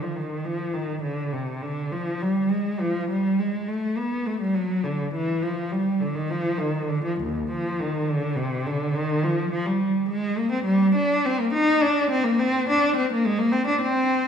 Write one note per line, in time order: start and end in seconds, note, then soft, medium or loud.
0.02 0.17 F3 medium
0.16 0.46 D#3 medium
0.45 0.74 F3 medium
0.74 1.04 D#3 medium
1.02 1.32 D3 medium
1.33 1.63 C3 medium
1.62 1.92 D3 medium
1.92 2.22 F3 medium
2.22 2.52 G3 medium
2.51 2.81 G#3 medium
2.80 3.10 F3 medium
3.10 3.39 G3 medium
3.39 3.68 G#3 medium
3.68 3.97 A3 medium
3.98 4.26 B3 medium
4.26 4.40 A3 medium
4.41 4.54 G3 medium
4.55 4.84 F#3 medium
4.84 5.13 D3 medium
5.14 5.42 E3 medium
5.43 5.71 F3 medium
5.72 6.00 G3 medium
6.01 6.15 D3 medium
6.15 6.29 D#3 medium
6.30 6.59 F3 medium
6.58 6.89 D#3 medium
6.89 7.05 D3 medium
7.04 7.20 F3 medium
7.21 7.50 D#2 medium
7.51 7.79 F3 medium
7.80 8.08 D#3 medium
8.09 8.37 D3 medium
8.36 8.66 C3 medium
8.66 8.96 D3 medium
8.95 9.24 D#3 medium
9.24 9.50 F3 medium
9.52 9.66 F3 medium
9.67 10.10 G3 medium
10.10 10.38 G#3 medium
10.39 10.53 A#3 medium
10.52 10.66 C4 medium
10.65 10.94 G3 medium
10.95 11.24 D4 medium
11.26 11.40 C4 medium
11.40 11.54 A#3 medium
11.53 11.82 D#4 medium
11.82 12.11 D4 medium
12.11 12.26 C4 medium
12.24 12.40 A#3 medium
12.39 12.70 C4 loud
12.69 12.98 D4 loud
12.96 13.12 C4 medium
13.13 13.27 A#3 medium
13.26 13.41 G#3 medium
13.39 13.54 A#3 medium
13.52 13.68 C4 medium
13.67 13.83 D4 medium
13.82 14.28 C4 loud